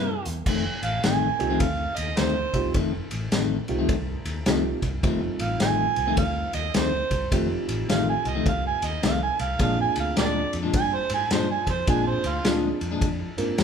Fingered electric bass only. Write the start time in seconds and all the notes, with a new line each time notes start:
Already playing: G2
0.26 E2
0.46 F1
0.83 A1
1.04 A1
1.41 C2
1.60 D2
1.98 D#2
2.19 D2
2.54 C2
2.74 F1
3.12 A1
3.33 A1
3.69 C2
3.89 C2
4.25 D#2
4.46 C2
4.82 C2
5.03 F1
5.40 A1
5.61 A1
5.97 C2
6.17 D2
6.54 D#2
6.75 D2
7.11 C2
7.32 F1
7.69 A1
7.90 A1
8.25 C2
8.46 C2
8.83 D#2
9.04 C2
9.40 C2
9.60 A#1
9.97 D2
10.18 D2
10.54 F2
10.73 G2
11.11 G#2
11.32 G2
11.67 F2
11.88 A#1
12.24 D2
12.45 D2
12.81 F2
13.02 F2
13.38 G#2
13.59 F2